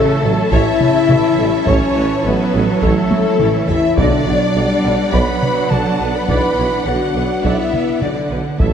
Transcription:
0.00 0.22 C#3 loud
0.00 0.52 A3 loud
0.00 3.98 C#4 loud
0.00 3.98 E4 loud
0.00 0.49 A4 loud
0.00 0.50 A4 loud
0.00 0.52 A4 loud
0.00 3.98 C#5 loud
0.00 3.98 E5 loud
0.00 3.93 A5 medium
0.22 0.35 A1 medium
0.22 0.32 A1 medium
0.22 0.51 F#3 loud
0.22 0.31 A4 medium
0.51 0.60 A1 loud
0.51 0.64 A1 loud
0.51 0.80 E3 medium
0.51 1.65 E4 loud
0.51 0.78 C#5 loud
0.51 1.65 E5 loud
0.51 1.38 E5 loud
0.51 1.67 E5 loud
0.51 taiko medium
0.81 1.09 C#3 medium
0.81 taiko mid medium
1.09 1.18 A1 medium
1.09 1.21 A1 medium
1.09 1.38 E3 medium
1.09 1.17 C#5 medium
1.09 taiko mid medium
1.38 1.46 A1 medium
1.38 1.50 A1 medium
1.38 1.67 G3 medium
1.38 1.46 A4 medium
1.66 1.75 A1 medium
1.66 1.79 A1 loud
1.66 1.96 F#3 medium
1.66 2.24 C#4 loud
1.66 2.21 C#5 loud
1.66 2.24 C#5 loud
1.66 1.94 C#5 loud
1.66 2.25 C#5 loud
1.66 taiko loud
1.96 2.04 A1 medium
1.96 2.07 A1 medium
1.96 2.25 E3 medium
1.96 2.04 B4 medium
2.25 2.36 A1 medium
2.25 2.33 A1 medium
2.25 3.38 F#3 loud
2.25 2.66 B3 loud
2.25 2.82 B4 medium
2.25 2.83 B4 loud
2.25 2.84 B4 medium
2.25 2.33 C#5 medium
2.53 2.65 A1 medium
2.53 2.62 A1 medium
2.53 2.62 A4 medium
2.81 2.94 A1 loud
2.81 2.90 A1 medium
2.81 3.67 A3 loud
2.81 3.68 A4 medium
2.81 3.69 A4 loud
2.81 3.70 A4 loud
2.81 3.09 C#5 medium
2.81 taiko medium
3.11 taiko high medium
3.40 3.48 A1 medium
3.40 3.52 A1 medium
3.40 3.98 E3 loud
3.40 3.48 C#5 medium
3.40 taiko mid medium
3.68 3.77 A1 medium
3.68 3.80 A1 medium
3.68 3.98 E4 loud
3.68 3.77 A4 medium
3.68 3.97 E5 loud
3.68 3.98 E5 medium
3.68 taiko low medium
3.97 4.05 B1 medium
3.97 4.09 B1 medium
3.97 4.80 B2 loud
3.97 4.26 D3 medium
3.97 8.59 B3 loud
3.97 8.59 D4 loud
3.97 5.14 D4 loud
3.97 8.59 D5 loud
3.97 4.24 D5 medium
3.97 5.11 D5 loud
3.97 5.14 D5 loud
3.97 8.59 F#5 loud
3.97 8.55 F#5 medium
3.97 taiko loud
4.26 4.38 B1 medium
4.26 4.35 B1 medium
4.26 4.55 F#3 medium
4.26 4.35 C#5 medium
4.55 4.67 B1 medium
4.55 4.64 B1 medium
4.55 5.13 G3 loud
4.55 4.64 D5 medium
4.84 4.96 B1 medium
4.84 4.93 B1 medium
4.84 4.92 B4 medium
5.12 5.25 B1 loud
5.12 5.21 B1 medium
5.12 6.28 F#3 loud
5.12 5.70 B4 loud
5.12 5.39 D5 medium
5.12 5.70 B5 loud
5.12 5.72 B5 loud
5.12 5.71 B5 medium
5.12 taiko medium
5.42 taiko mid medium
5.70 5.82 B1 medium
5.70 5.79 B1 medium
5.70 6.15 A4 loud
5.70 5.79 D5 medium
5.70 6.16 A5 medium
5.70 6.14 A5 medium
5.70 6.15 A5 loud
5.70 taiko mid medium
6.00 6.08 B1 medium
6.00 6.12 B1 medium
6.00 6.08 B4 medium
6.14 6.28 B4 medium
6.14 6.26 B5 medium
6.14 6.28 B5 medium
6.27 6.36 B1 medium
6.27 6.40 B1 medium
6.27 6.85 E3 medium
6.27 6.85 B4 loud
6.27 6.56 D5 medium
6.27 6.84 B5 medium
6.27 6.85 B5 loud
6.27 6.85 B5 medium
6.27 taiko medium
6.57 6.65 B1 medium
6.57 6.70 B1 medium
6.57 6.66 C#5 medium
6.84 6.94 B1 medium
6.84 6.98 B1 medium
6.84 7.15 D3 medium
6.84 7.45 F#4 medium
6.84 6.95 D5 medium
6.84 7.43 F#5 medium
6.84 7.44 F#5 medium
6.84 7.43 F#5 medium
7.15 7.23 B1 medium
7.15 7.27 B1 medium
7.15 7.43 F#3 medium
7.15 7.24 B4 medium
7.42 7.52 B1 medium
7.42 7.56 B1 medium
7.42 8.02 B3 medium
7.42 8.02 E4 medium
7.42 7.71 D5 medium
7.42 8.01 E5 medium
7.42 8.04 E5 medium
7.42 8.02 E5 medium
7.42 taiko medium
7.73 taiko mid soft
8.01 8.09 B1 soft
8.01 8.13 B1 medium
8.01 8.59 D3 medium
8.01 8.31 D4 medium
8.01 8.31 D5 medium
8.01 8.11 D5 medium
8.01 taiko mid medium
8.30 8.38 B1 soft
8.30 8.42 B1 medium
8.30 8.39 B4 medium
8.59 8.67 A1 medium
8.59 8.71 A1 medium
8.59 8.73 F#3 medium
8.59 8.73 A3 medium
8.59 8.73 C#4 medium
8.59 8.73 E4 medium
8.59 8.73 A4 medium
8.59 8.73 E5 medium
8.59 8.73 A5 medium
8.59 taiko loud

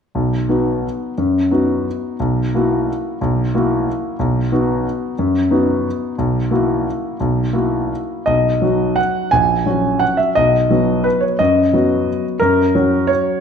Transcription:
0.15 0.48 B1 soft
0.49 1.13 B3 soft
0.49 1.13 D#4 soft
0.49 1.14 F#4 soft
1.18 1.50 F#2 soft
1.51 2.16 B3 soft
1.51 2.16 D#4 soft
1.51 2.16 F#4 soft
2.20 2.52 B1 soft
2.55 3.18 A#3 soft
2.55 3.18 E4 soft
2.55 3.18 F#4 soft
3.21 3.53 B1 soft
3.55 4.16 A#3 soft
3.55 4.16 E4 soft
3.55 4.16 F#4 soft
4.19 4.50 B1 soft
4.52 5.14 B3 soft
4.52 5.14 D#4 soft
4.52 5.14 F#4 soft
5.19 5.50 F#2 soft
5.51 6.14 B3 soft
5.51 6.14 D#4 soft
5.51 6.15 F#4 soft
6.18 6.50 B1 soft
6.51 7.16 A#3 soft
6.51 7.16 E4 soft
6.51 7.16 F#4 soft
7.20 7.53 B1 soft
7.53 8.23 A#3 soft
7.53 8.23 E4 soft
7.53 8.23 F#4 soft
8.26 8.61 B1 soft
8.26 8.97 D#5 medium
8.62 9.28 F#3 soft
8.62 9.29 D#4 soft
8.62 9.29 F#4 soft
8.96 9.32 F#5 medium
9.31 9.66 A#1 soft
9.31 10.01 G#5 medium
9.66 10.32 F#3 soft
9.66 10.32 C#4 soft
9.66 10.32 F#4 soft
9.99 10.18 F#5 medium
10.17 10.35 E5 medium
10.35 10.69 B1 soft
10.35 11.05 D#5 medium
10.70 11.36 F#3 soft
10.70 11.36 B3 soft
10.70 11.36 F#4 soft
11.04 11.22 B4 medium
11.21 11.39 C#5 soft
11.39 11.72 F#2 soft
11.39 12.25 D#5 medium
11.73 12.38 F#3 soft
11.73 12.38 B3 soft
11.73 12.38 F#4 soft
12.40 12.74 F#2 soft
12.40 13.08 A#4 medium
12.75 13.39 F#3 soft
12.75 13.39 C#4 soft
12.75 13.40 F#4 soft
13.07 13.40 C#5 medium

